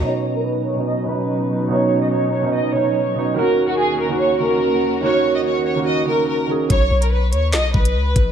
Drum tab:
HH |----------------|----------------|----------------|----------------|
CP |----------------|----------------|----------------|----------------|
SD |----------------|----------------|----------------|----------------|
BD |----------------|----------------|----------------|----------------|

HH |x--x--x-x--x--x-|
CP |--------x-------|
SD |--------o-------|
BD |o---------o---o-|